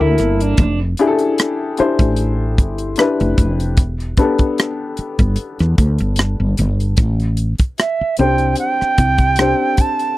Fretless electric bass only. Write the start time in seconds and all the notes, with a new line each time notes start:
0.01 D2
0.19 G1
0.58 F1
1.80 muted fretless electric bass stroke
2.00 A1
2.59 G1
3.21 F1
3.38 F1
3.78 E1
4.99 muted fretless electric bass stroke
5.20 G1
5.60 E2
5.79 D2
6.00 G1
6.40 G1
6.59 G1
6.98 A1
7.60 muted fretless electric bass stroke
8.01 muted fretless electric bass stroke
8.19 C2
8.82 muted fretless electric bass stroke
8.99 C2